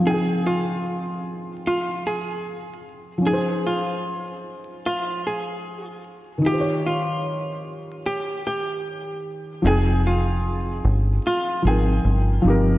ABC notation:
X:1
M:4/4
L:1/16
Q:"Swing 16ths" 1/4=75
K:Fm
V:1 name="Hollow-body jazz guitar"
A2 F6 F2 A6 | A2 F6 F2 A3 z3 | G2 F6 G2 G6 | A2 F6 F2 A3 z3 |]
V:2 name="Felt piano"
[F,CEAg]16 | [F,DEAc]16 | [E,EFGcd]16 | [F,CEAg]6- [F,CEAg] z3 [F,CEBg]4 [F,CEGB]2 |]
V:3 name="Fingered electric bass" clef=bass
z16 | z16 | z16 | F,,,6 G,,,2 z2 A,,,2 G,,,2 G,,,2 |]